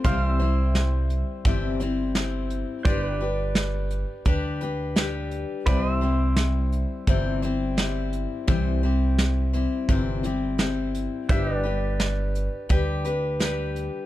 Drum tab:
HH |x-xxxxxx|x-xxxxxx|x-xxxxxx|x-xxxxxx|
SD |--o---o-|--o---o-|--o---o-|--o---o-|
BD |o---o---|o---o---|o---o---|o---o---|

HH |x-xxxxxx|
SD |--o---o-|
BD |o---o---|